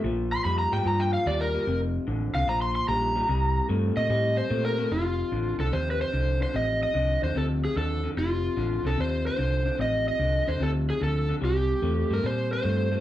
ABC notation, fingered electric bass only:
X:1
M:4/4
L:1/8
Q:"Swing" 1/4=148
K:Fmix
V:1 name="Fingered electric bass" clef=bass
B,,,2 F,, _A,, G,,2 E,,2 | F,,,2 A,,, C,, B,,,2 B,,,2 | C,,2 G,, B,, A,,2 B,,2 | F,,,2 A,,, C,, E,,2 C,,2 |
A,,,2 C,, E,, D,,2 E,,2 | F,,,2 A,,, C,, E,,2 C,,2 | A,,,2 C,, E,, D,,2 D,,2 | C,,2 =E,, G,, B,,2 G,,2 |]